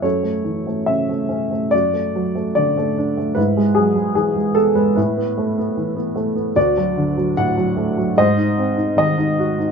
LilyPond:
<<
  \new Staff \with { instrumentName = "Upright piano" } { \time 4/4 \key fis \minor \tempo 4 = 74 << { cis''4 e''4 d''4 d''4 | b'8 gis'8 gis'8 a'16 b'16 b'4. r8 | d''4 fis''4 dis''4 dis''4 | } \\ { a'2 fis'2 | e'2 e'2 | fis'2 bis'2 | } >> }
  \new Staff \with { instrumentName = "Upright piano" } { \clef bass \time 4/4 \key fis \minor fis,16 a16 e16 a16 cis16 a16 cis'16 a16 fis,16 a16 fis16 a16 d16 a16 d'16 a16 | gis,16 gis16 fis16 gis16 e16 gis16 b16 gis16 a,16 b16 a16 b16 e16 b16 a16 b16 | d,16 fis16 d16 fis16 a,16 fis16 a16 fis16 gis,16 dis'16 bis16 dis'16 dis16 dis'16 fis'16 dis'16 | }
>>